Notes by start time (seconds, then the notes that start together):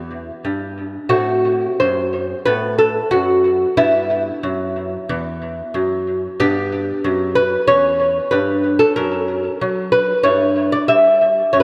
Already playing: E2 C4 E4
0.45 G2
1.09 A2 C4 F#4
1.80 F#2 C5
2.45 A2 B3 B4
2.78 A4
3.11 F#2 F#4
3.77 G2 B3 E4
4.43 F#2
5.09 E2
5.74 F#2
6.40 G2 B3 G4
7.04 F#2
7.35 B4
7.67 E2 C#4 C#5
8.31 G2 B4
8.79 A4
8.96 F#2 C#4 A#4
9.61 F#3
9.92 B4
10.23 G2 E4 C#5
10.72 D5
10.88 G3 E5
11.53 F#2 C#4 C#5
11.60 B4